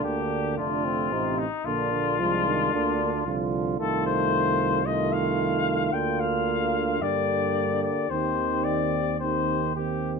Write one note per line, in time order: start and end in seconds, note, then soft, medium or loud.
0.00 0.56 D3 soft
0.00 0.60 A#3 soft
0.00 0.58 D4 soft
0.00 0.57 G4 medium
0.04 0.59 D2 soft
0.58 1.11 F1 soft
0.58 1.13 D3 soft
0.58 1.14 A3 soft
0.58 0.87 D4 soft
0.58 1.40 F4 medium
0.85 1.14 C4 soft
1.12 1.46 A1 soft
1.12 1.47 C3 soft
1.12 1.47 C4 soft
1.12 1.47 D#4 soft
1.38 1.67 D#4 medium
1.65 2.21 A#1 soft
1.65 1.91 D3 soft
1.65 2.16 A#3 soft
1.65 2.16 D4 soft
1.65 3.52 F4 medium
1.92 2.20 D3 soft
2.19 2.72 C2 soft
2.19 2.47 F3 soft
2.19 2.75 G#3 soft
2.19 2.73 D4 soft
2.46 2.74 D#3 soft
2.73 3.25 D2 soft
2.73 3.26 D3 soft
2.73 2.99 A#3 soft
2.73 3.26 D4 soft
3.00 3.12 A#3 soft
3.26 3.78 C2 soft
3.26 3.79 D3 soft
3.26 3.78 F3 soft
3.26 3.79 F4 soft
3.79 5.89 C2 soft
3.79 4.82 D#3 soft
3.79 4.82 A3 soft
3.79 4.82 F4 soft
3.79 4.05 A4 medium
4.07 4.87 C5 medium
4.85 5.96 D#3 soft
4.85 5.94 A3 soft
4.85 5.91 F4 soft
4.85 5.14 D#5 medium
5.12 5.95 F5 medium
5.93 7.03 D2 soft
5.93 7.02 D3 soft
5.93 7.02 A#3 soft
5.93 7.04 F4 soft
5.93 6.21 G5 medium
6.20 7.03 F5 medium
7.02 7.93 G2 soft
7.02 8.09 D3 soft
7.02 8.09 A#3 soft
7.02 8.10 G4 soft
7.02 7.82 D5 medium
7.83 8.12 D5 medium
8.10 10.20 D#2 soft
8.10 9.03 D#3 soft
8.10 9.16 C4 soft
8.10 9.16 G4 soft
8.10 8.66 C5 medium
8.64 9.19 D5 medium
9.20 9.75 D#3 soft
9.20 9.60 C4 soft
9.20 9.75 G4 soft
9.20 9.75 C5 soft
9.76 10.20 D#3 soft
9.76 10.20 C4 soft
9.76 10.16 G4 soft
9.76 10.12 G4 soft